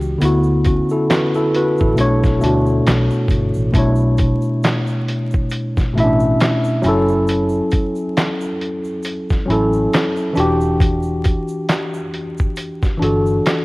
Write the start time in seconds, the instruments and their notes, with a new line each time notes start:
Already playing: fingered electric bass C#2, tine electric piano E3 D4 F#4 G4
0.02 shaker
0.18 fingered electric bass D2, tine electric piano D3 B3, closed hi-hat, shaker
0.23 tine electric piano E4 F#4
0.43 shaker
0.65 tine electric piano C#4 F#4, kick, closed hi-hat, shaker
0.89 tine electric piano E4 A4, shaker
1.10 tine electric piano F#4 B4, snare, clap, closed hi-hat, shaker
1.34 tine electric piano E4 A4, shaker
1.54 tine electric piano F#4 B4, closed hi-hat
1.78 fingered electric bass A1, tine electric piano E4 A4, kick, shaker
1.94 fingered electric bass B1, tine electric piano B2 A3, closed hi-hat, shaker
1.99 tine electric piano D4 C#5
2.23 kick, snare, shaker
2.39 fingered electric bass D2, tine electric piano B2 A3, shaker
2.43 tine electric piano D4 F#4, closed hi-hat
2.66 shaker
2.87 fingered electric bass B1, snare, clap, closed hi-hat, shaker
3.10 shaker
3.28 fingered electric bass G1, kick, closed hi-hat, shaker
3.54 fingered electric bass A1, shaker
3.72 fingered electric bass B1, tine electric piano B2 A3 D4, kick, closed hi-hat, shaker
3.77 tine electric piano E4 C#5
3.96 shaker
4.17 kick, closed hi-hat, shaker
4.42 shaker
4.63 snare, clap, closed hi-hat, shaker
4.87 shaker
5.08 closed hi-hat
5.31 kick, shaker
5.50 closed hi-hat, shaker
5.77 muted fingered electric bass stroke, kick, snare, shaker
5.94 fingered electric bass A1, tine electric piano B2 A3 C#4
5.98 tine electric piano E4 E5, closed hi-hat
6.03 tine electric piano D4
6.20 shaker
6.40 snare, clap, closed hi-hat, shaker
6.64 shaker
6.82 fingered electric bass F#1, tine electric piano F#3 C#4, closed hi-hat, shaker
6.86 tine electric piano E4 A4
7.08 shaker
7.27 closed hi-hat, shaker
7.49 shaker
7.71 kick, closed hi-hat, shaker
7.95 shaker
8.17 snare, clap, closed hi-hat, shaker
8.41 shaker
8.61 closed hi-hat
8.84 shaker
9.03 closed hi-hat, shaker
9.29 muted fingered electric bass stroke, kick, snare, shaker
9.46 fingered electric bass A1, tine electric piano F#3 C#4
9.50 tine electric piano E4 A4, closed hi-hat
9.73 shaker
9.93 snare, clap, closed hi-hat, shaker
10.16 shaker
10.33 tine electric piano E3 D4, shaker
10.37 fingered electric bass E1, tine electric piano F#4 G4, closed hi-hat
10.61 shaker
10.80 kick, closed hi-hat, shaker
11.03 shaker
11.24 kick, closed hi-hat, shaker
11.48 shaker
11.69 snare, clap, closed hi-hat, shaker
11.94 shaker
12.14 closed hi-hat
12.38 kick, shaker
12.56 closed hi-hat, shaker
12.83 muted fingered electric bass stroke, kick, snare, shaker
12.98 tine electric piano E3 D4
13.02 fingered electric bass G1, tine electric piano F#4 A4, closed hi-hat
13.26 shaker
13.46 snare, clap, closed hi-hat, shaker